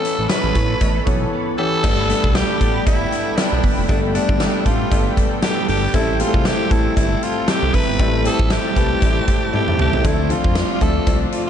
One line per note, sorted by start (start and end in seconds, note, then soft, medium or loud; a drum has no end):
0.00 0.57 E3 medium
0.00 0.81 E3 medium
0.00 0.57 B3 medium
0.00 0.30 C#4 medium
0.00 0.57 C#4 medium
0.00 0.31 A4 loud
0.00 0.58 A4 medium
0.00 1.82 A4 medium
0.00 1.82 C#5 medium
0.00 1.82 B5 medium
0.05 0.56 B3 medium
0.05 closed hi-hat medium
0.19 0.27 A1 medium
0.29 1.06 C#4 medium
0.29 1.07 B4 loud
0.29 snare loud
0.29 closed hi-hat medium
0.29 tambourine medium
0.29 cowbell medium
0.44 0.53 A1 medium
0.55 0.75 A2 medium
0.55 1.33 B3 medium
0.55 kick medium
0.55 closed hi-hat medium
0.81 1.01 A1 loud
0.81 1.58 E3 medium
0.81 kick loud
0.81 closed hi-hat medium
0.81 cowbell medium
1.06 1.26 B1 medium
1.06 1.47 E3 medium
1.06 1.47 B3 medium
1.06 1.47 C#4 medium
1.06 1.90 C#4 medium
1.06 1.48 A4 medium
1.06 kick loud
1.06 closed hi-hat medium
1.33 2.10 B3 medium
1.57 1.78 E3 medium
1.57 1.84 E3 medium
1.57 1.78 B3 medium
1.57 1.79 C#4 medium
1.57 1.79 G4 medium
1.57 2.37 A4 loud
1.83 2.14 G1 loud
1.83 2.34 G2 medium
1.83 2.36 D3 medium
1.83 2.04 G3 medium
1.83 3.89 G3 medium
1.83 2.38 G3 medium
1.83 2.04 A3 medium
1.83 2.04 B3 medium
1.83 2.04 D4 medium
1.83 2.04 A4 medium
1.83 10.01 A4 medium
1.83 2.61 A4 medium
1.83 7.96 G5 medium
1.83 5.91 B5 medium
1.83 kick loud
1.83 crash medium
1.83 cowbell medium
2.09 2.50 G3 medium
2.09 2.50 A3 medium
2.09 2.50 B3 medium
2.09 2.86 B3 medium
2.09 2.50 D4 medium
2.09 2.50 A4 medium
2.09 closed hi-hat medium
2.24 2.43 B1 loud
2.24 kick loud
2.35 2.85 G2 medium
2.35 2.87 D3 medium
2.35 2.90 G3 medium
2.35 3.12 D4 medium
2.35 2.86 G4 loud
2.35 snare loud
2.35 closed hi-hat medium
2.35 tambourine medium
2.35 cowbell medium
2.60 2.80 A1 medium
2.60 3.39 G3 medium
2.60 3.39 A3 medium
2.60 3.39 B3 medium
2.60 3.40 D4 medium
2.60 3.89 A4 medium
2.60 3.40 A4 medium
2.60 kick medium
2.60 closed hi-hat medium
2.86 3.06 G1 medium
2.86 3.36 G2 medium
2.86 3.38 D3 medium
2.86 3.40 G3 medium
2.86 3.37 B3 medium
2.86 3.39 E4 loud
2.86 kick loud
2.86 closed hi-hat medium
2.86 cowbell medium
3.12 3.63 D4 medium
3.12 closed hi-hat medium
3.37 3.87 G2 medium
3.37 3.88 D3 medium
3.37 3.90 G3 medium
3.37 4.13 B3 medium
3.37 3.88 D4 medium
3.37 snare loud
3.37 closed hi-hat loud
3.37 tambourine medium
3.37 cowbell medium
3.52 3.61 B1 medium
3.63 3.74 G1 medium
3.63 4.39 D4 medium
3.63 kick medium
3.63 open hi-hat medium
3.78 3.87 F1 medium
3.88 4.19 G1 loud
3.88 4.38 G2 medium
3.88 4.40 D3 medium
3.88 4.09 G3 medium
3.88 5.94 G3 medium
3.88 4.43 G3 loud
3.88 4.09 A3 medium
3.88 4.09 B3 medium
3.88 4.00 D4 medium
3.88 4.10 D4 medium
3.88 4.10 A4 medium
3.88 4.65 A4 medium
3.88 kick loud
3.88 closed hi-hat medium
3.88 cowbell medium
4.14 4.55 G3 medium
4.14 4.55 A3 medium
4.14 4.55 B3 medium
4.14 4.91 B3 medium
4.14 4.55 D4 medium
4.14 4.67 D4 medium
4.14 4.55 A4 medium
4.14 closed hi-hat medium
4.29 4.48 G1 medium
4.29 kick loud
4.40 4.90 G2 medium
4.40 4.92 D3 medium
4.40 4.94 G3 medium
4.40 5.16 D4 medium
4.40 snare loud
4.40 closed hi-hat medium
4.40 tambourine medium
4.40 cowbell medium
4.65 4.85 A1 medium
4.65 5.44 G3 medium
4.65 5.44 A3 medium
4.65 5.45 B3 medium
4.65 5.45 D4 medium
4.65 5.17 F4 medium
4.65 5.94 A4 medium
4.65 5.45 A4 medium
4.65 kick medium
4.65 closed hi-hat medium
4.91 5.11 G1 medium
4.91 5.41 G2 medium
4.91 5.43 D3 medium
4.91 5.45 G3 medium
4.91 5.42 B3 medium
4.91 kick loud
4.91 closed hi-hat medium
4.91 cowbell medium
5.17 5.68 D4 medium
5.17 kick medium
5.17 closed hi-hat medium
5.42 5.93 G2 medium
5.42 5.95 D3 medium
5.42 5.96 G3 medium
5.42 6.00 B3 medium
5.42 5.67 G4 medium
5.42 snare loud
5.42 closed hi-hat loud
5.42 tambourine medium
5.42 cowbell medium
5.68 5.88 G1 medium
5.68 6.00 D4 medium
5.68 5.93 G4 medium
5.68 open hi-hat medium
5.93 6.24 A1 loud
5.93 6.43 A2 medium
5.93 6.45 E3 medium
5.93 6.14 G3 medium
5.93 7.99 G3 medium
5.93 6.14 A3 medium
5.93 6.47 A3 medium
5.93 6.15 C4 medium
5.93 6.15 E4 medium
5.93 6.22 E4 medium
5.93 6.70 A4 medium
5.93 6.15 A4 medium
5.93 kick loud
5.93 closed hi-hat medium
5.93 cowbell medium
6.20 6.60 G3 medium
6.20 6.60 A3 medium
6.20 6.61 C4 medium
6.20 6.96 C4 medium
6.20 6.61 E4 medium
6.20 6.48 F4 medium
6.20 6.27 G#4 medium
6.20 closed hi-hat medium
6.27 6.64 A4 medium
6.34 6.53 C2 medium
6.34 kick medium
6.44 6.94 A2 medium
6.44 6.96 E3 medium
6.44 6.98 A3 medium
6.44 7.22 E4 medium
6.44 6.73 G4 medium
6.44 snare loud
6.44 closed hi-hat medium
6.44 tambourine medium
6.44 cowbell medium
6.71 6.90 A1 medium
6.71 7.50 G3 medium
6.71 7.50 A3 medium
6.71 7.50 C4 medium
6.71 6.97 E4 medium
6.71 7.50 E4 medium
6.71 8.00 A4 medium
6.71 7.50 A4 medium
6.71 kick medium
6.71 closed hi-hat medium
6.96 7.16 G1 loud
6.96 7.46 A2 medium
6.96 7.48 E3 medium
6.96 7.50 A3 medium
6.96 7.48 C4 medium
6.96 7.25 E4 medium
6.96 kick loud
6.96 closed hi-hat medium
6.96 cowbell medium
7.23 7.73 E4 medium
7.23 7.51 F4 medium
7.23 closed hi-hat medium
7.47 7.97 A2 medium
7.47 8.00 E3 medium
7.47 8.03 A3 medium
7.47 8.25 C4 medium
7.47 7.76 G4 loud
7.47 snare loud
7.47 closed hi-hat loud
7.47 tambourine medium
7.47 cowbell medium
7.63 7.71 C2 medium
7.74 7.85 F1 medium
7.74 8.50 E4 medium
7.74 8.26 B4 loud
7.74 kick medium
7.74 open hi-hat medium
7.89 8.01 G1 medium
7.98 8.29 A1 loud
7.98 9.00 A2 medium
7.98 9.03 E3 medium
7.98 8.20 G3 medium
7.98 10.05 G3 medium
7.98 8.20 A3 medium
7.98 8.20 C4 medium
7.98 8.20 E4 medium
7.98 8.76 A4 medium
7.98 8.20 A4 medium
7.98 10.03 A5 medium
7.98 kick loud
7.98 closed hi-hat medium
7.98 cowbell medium
8.03 9.05 A3 medium
8.25 8.65 G3 medium
8.25 8.66 A3 medium
8.25 8.66 C4 medium
8.25 9.02 C4 medium
8.25 8.66 E4 medium
8.25 8.66 G4 medium
8.25 8.54 A4 loud
8.25 closed hi-hat medium
8.39 8.59 A1 medium
8.39 kick loud
8.50 9.27 E4 medium
8.50 9.54 G4 loud
8.50 snare loud
8.50 closed hi-hat medium
8.50 tambourine medium
8.50 cowbell medium
8.75 8.96 C2 medium
8.75 9.54 G3 medium
8.75 9.54 A3 medium
8.75 9.55 C4 medium
8.75 9.55 E4 medium
8.75 10.05 A4 medium
8.75 9.55 B4 medium
8.75 kick loud
8.75 closed hi-hat medium
9.02 9.21 A1 loud
9.02 9.52 A2 medium
9.02 9.54 E3 medium
9.02 9.56 A3 medium
9.02 9.53 C4 medium
9.02 kick loud
9.02 closed hi-hat medium
9.02 cowbell medium
9.28 9.78 E4 medium
9.28 kick medium
9.28 closed hi-hat medium
9.53 10.05 A2 medium
9.53 10.04 E3 medium
9.53 10.05 A3 medium
9.53 10.04 C4 medium
9.53 9.78 G4 medium
9.53 high tom medium
9.53 cowbell medium
9.68 mid tom medium
9.79 9.99 C2 medium
9.79 10.11 E4 medium
9.79 10.08 G4 medium
9.79 mid tom medium
9.93 floor tom loud
10.04 10.35 D2 loud
10.04 10.54 D3 medium
10.04 10.25 F3 medium
10.04 10.25 A3 medium
10.04 10.57 A3 medium
10.04 10.30 C4 medium
10.04 10.25 C4 medium
10.04 10.25 D4 medium
10.04 10.57 D4 medium
10.04 10.33 E4 medium
10.04 11.50 F4 medium
10.04 10.81 A4 medium
10.04 10.25 A4 medium
10.04 11.50 D5 medium
10.04 kick loud
10.04 closed hi-hat medium
10.04 cowbell medium
10.29 10.70 F3 medium
10.29 10.70 A3 medium
10.29 10.71 C4 medium
10.29 11.07 C4 medium
10.29 10.71 D4 medium
10.29 10.84 F4 medium
10.29 10.71 A4 medium
10.29 closed hi-hat medium
10.44 10.64 F2 medium
10.44 kick medium
10.55 11.06 D3 medium
10.55 11.08 A3 medium
10.55 11.09 D4 medium
10.55 11.32 F4 medium
10.55 snare loud
10.55 closed hi-hat medium
10.55 tambourine medium
10.55 cowbell medium
10.81 11.01 D2 medium
10.81 11.50 F3 medium
10.81 11.50 A3 medium
10.81 11.50 C4 medium
10.81 11.50 D4 medium
10.81 11.50 A4 medium
10.81 11.21 A4 medium
10.81 11.50 E5 medium
10.81 kick medium
10.81 closed hi-hat medium
11.07 11.26 C2 medium
11.07 11.50 D3 medium
11.07 11.50 A3 medium
11.07 11.50 C4 medium
11.07 11.50 D4 medium
11.07 kick loud
11.07 closed hi-hat medium
11.07 cowbell medium
11.32 11.50 F4 medium
11.32 closed hi-hat medium